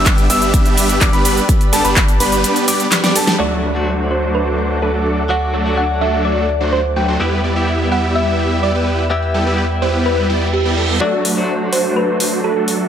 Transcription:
Already playing: G1 G3 B3 D4 G4 B4 D5 E5 B5 E6
0.06 kick, clap, closed hi-hat, shaker
0.18 closed hi-hat, shaker
0.30 G1 G3 B3 D4 G4 E5 E6, open hi-hat, ride, shaker
0.42 closed hi-hat, shaker
0.54 kick, closed hi-hat, shaker
0.66 closed hi-hat, shaker
0.77 open hi-hat, ride, shaker
0.89 closed hi-hat, shaker
1.01 G1 G3 B3 D4 G4 D5 D6, kick, clap, closed hi-hat, shaker
1.13 G1 G3 B3 D4 G4 B4 B5, closed hi-hat, shaker
1.25 open hi-hat, ride, shaker
1.37 shaker
1.49 kick, closed hi-hat, shaker
1.61 closed hi-hat, shaker
1.73 G1 G3 B3 D4 G4 A4 A5, open hi-hat, ride, shaker
1.85 G1 G3 B3 D4 G4 B4 B5, closed hi-hat, shaker
1.96 kick, clap, closed hi-hat, shaker
2.08 closed hi-hat, shaker
2.20 G1 G3 B3 D4 G4 B4 B5, open hi-hat, ride, shaker
2.32 closed hi-hat, shaker
2.44 closed hi-hat, shaker
2.56 closed hi-hat, shaker
2.68 G3 B3 D4 G4 D5 D6, open hi-hat, ride, shaker
2.80 closed hi-hat, shaker
2.92 snare, clap, closed hi-hat, shaker
3.04 G3 B3 D4 G4 D5 D6, snare, closed hi-hat, shaker
3.15 G3 B3 D4 G4 A4 A5, open hi-hat, ride, shaker
3.27 snare, closed hi-hat, shaker
3.39 D2 F#3 A3 D4 F#4 A4 D5 F#5 D6, crash, shaker
3.63 F#3 A3 D4 F#4 B4, closed hi-hat
3.74 F#3 A3 D4 F#4 C5, closed hi-hat
3.87 closed hi-hat
4.11 F#3 A3 D4 F#4 C5, closed hi-hat, shaker
4.23 closed hi-hat, shaker
4.35 B4, closed hi-hat, shaker
4.46 closed hi-hat, shaker
4.58 closed hi-hat, shaker
4.70 closed hi-hat, shaker
4.82 F#3 A3 D4 F#4 A4 B4, closed hi-hat, shaker
4.94 F#3 A3 D4 F#4 A4, shaker
5.06 closed hi-hat, shaker
5.18 closed hi-hat, shaker
5.29 F#3 A3 D4 F#4 F#5, closed hi-hat
5.42 shaker
5.54 F#3 A3 D4 F#4 A4, closed hi-hat, shaker
5.64 F#3 A3 D4 F#4 A4, closed hi-hat
5.77 F#5, closed hi-hat, shaker
5.89 shaker
6.01 F#3 A3 D4 F#4 A4 E5, closed hi-hat, shaker
6.13 closed hi-hat, shaker
6.25 D5, closed hi-hat, shaker
6.37 closed hi-hat, shaker
6.49 closed hi-hat, shaker
6.61 F#3 A3 D4 F#4 C5, closed hi-hat, shaker
6.72 C5, closed hi-hat, shaker
6.85 shaker
6.96 F#3 A3 D4 F#4 B4 G5, closed hi-hat, shaker
7.08 F#3 A3 D4 F#4 C5, closed hi-hat
7.20 E2 G3 B3 E4 G4 B4 E5 G5 E6, closed hi-hat
7.44 G3 B3 E4 G4 D5, closed hi-hat, shaker
7.55 G3 B3 E4 G4 E5, closed hi-hat
7.68 closed hi-hat, shaker
7.92 G3 B3 E4 G4 E5 F#5, closed hi-hat, shaker
8.04 closed hi-hat
8.15 E5, closed hi-hat, shaker
8.27 closed hi-hat, shaker
8.39 closed hi-hat, shaker
8.51 closed hi-hat
8.63 G3 B3 E4 G4 D5, closed hi-hat, shaker
8.75 G3 B3 E4 G4 B4
8.87 closed hi-hat, shaker
8.99 closed hi-hat, shaker
9.10 G3 B3 E4 G4 E5, closed hi-hat, shaker
9.23 closed hi-hat, shaker
9.34 G3 B3 E4 G4 A4, closed hi-hat, shaker
9.45 G3 B3 E4 G4 B4, closed hi-hat
9.58 closed hi-hat, shaker
9.70 shaker
9.82 G3 B3 E4 G4 B4 C5, closed hi-hat, shaker
9.94 closed hi-hat, shaker
10.06 B4, closed hi-hat, reverse cymbal, shaker
10.18 closed hi-hat, shaker
10.30 G3 B3 E4 G4 D5, closed hi-hat, shaker
10.42 closed hi-hat, shaker
10.53 G4, closed hi-hat, shaker
10.65 G3 B3 E4 G4 D5, closed hi-hat, shaker
10.77 G3 B3 E4 G4 A4, closed hi-hat, shaker
10.89 closed hi-hat
11.00 F#3 A3 D4 F#4 A4 D5 F#5, riser
11.25 F#3 A3 D4 F#4 B4, open hi-hat
11.36 F#3 A3 D4 F#4 C5
11.73 F#3 A3 D4 F#4 C5, open hi-hat
11.97 B4
12.20 open hi-hat
12.44 F#3 A3 D4 F#4 A4 B4
12.56 F#3 A3 D4 F#4 A4
12.68 open hi-hat

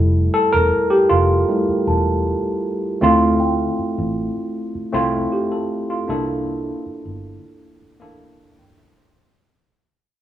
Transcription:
Already playing: F1 G3 A3 E4 A4
0.34 A4
0.53 E1 A#4
0.90 G4
1.09 F1 F4
1.48 G3 A3 E4
1.69 muted fingered electric bass stroke
1.87 E1 A5
3.01 D2 A3 C4 E4 F4
3.40 G5
3.79 muted fingered electric bass stroke
3.98 A1
4.75 muted fingered electric bass stroke
4.92 C2 A3 C4 E4 F4
5.32 G4
5.52 A4
5.90 F4
6.08 C2 A#3 D4 E4 A4
6.86 muted fingered electric bass stroke
7.05 G1
7.82 muted fingered electric bass stroke
8.00 A1 A#3 D4 E4 A4
8.59 G1 G5
8.78 A#1 E5
8.97 C5

